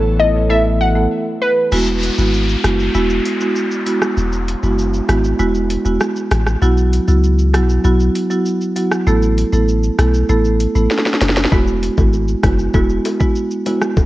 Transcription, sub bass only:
Already playing: A1
1.72 E1
2.18 G#1
2.64 F#1
2.95 E1
4.17 E1
4.63 F#1
5.09 G#1
5.40 E1
5.86 E1
6.31 A1
6.62 B1
7.08 C#2
7.54 B1
7.85 B1
9.07 A1
9.53 A1
9.99 B1
10.29 A1
10.75 A1
11.21 F#1
11.52 E1
11.98 G#1
12.44 F#1
12.74 E1
13.97 E1

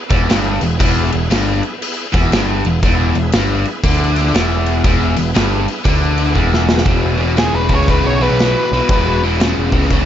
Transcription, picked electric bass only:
0.10 E1
0.30 G1
0.61 E1
0.80 E1
1.14 E1
1.30 G1
2.14 E1
2.32 G1
2.65 E1
2.83 E1
3.15 E1
3.34 G1
3.84 D2
4.34 E1
4.84 E1
5.19 E1
5.36 G1
5.85 D2
6.35 E1
6.86 E1
7.53 E1
7.69 C#2
8.04 B1
8.30 B1
8.72 B1
8.90 E1
9.57 E1
9.73 C#2

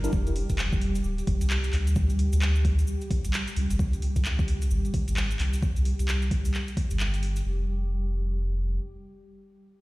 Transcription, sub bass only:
0.13 F1
0.50 F1
1.05 D1
1.27 F1
1.41 C2
1.73 D2
2.33 D2
3.11 C2
3.25 A1
3.57 C#2
3.70 G#1
3.79 C#2
4.16 C#2
4.71 G#1
4.94 C#2
5.08 G#1
5.40 C2
5.99 C2
6.91 G1
7.46 F1

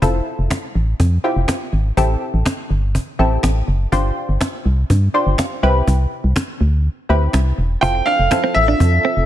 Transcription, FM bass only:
0.02 F1
0.39 F1
0.75 A1
1.00 F2
1.36 F1
1.73 G#1
1.97 A1
2.34 A1
2.70 G1
3.19 A1
3.44 A1
3.68 F#1
3.92 G1
4.29 G1
4.66 C2
4.90 G2
5.27 G1
5.63 C2
5.87 C2
6.24 C2
6.61 D2
7.10 D2
7.34 C2
7.58 E1
7.83 F1
8.19 F1
8.56 A1
8.80 F2
9.17 F1

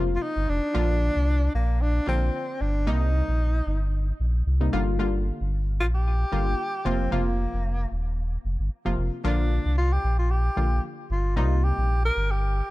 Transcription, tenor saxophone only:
0.16 F4
0.22 D#4
0.49 D4
1.55 A#3
1.82 D4
2.08 C4
2.61 D4
2.88 D#4
5.80 F4
5.95 G4
6.86 C4
7.13 A#3
9.25 D4
9.78 F4
9.92 G4
10.19 F4
10.31 G4
11.11 F4
11.37 F4
11.64 G4
12.05 A#4
12.31 G4

